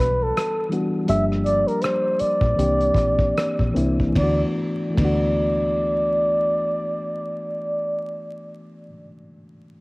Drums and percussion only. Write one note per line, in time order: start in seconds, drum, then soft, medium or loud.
0.00 cross-stick soft
0.00 closed hi-hat medium
0.37 cross-stick medium
0.37 closed hi-hat medium
0.72 closed hi-hat medium
1.08 closed hi-hat medium
1.32 cross-stick soft
1.46 closed hi-hat soft
1.68 closed hi-hat soft
1.81 cross-stick medium
1.81 closed hi-hat medium
2.19 closed hi-hat medium
2.41 kick medium
2.59 closed hi-hat medium
2.81 closed hi-hat soft
2.94 kick medium
2.94 cross-stick soft
2.94 closed hi-hat medium
3.19 kick medium
3.37 cross-stick medium
3.37 closed hi-hat medium
3.59 kick medium
3.76 closed hi-hat medium
4.00 kick medium
4.15 kick medium
4.15 ride medium
4.97 kick medium
4.97 ride medium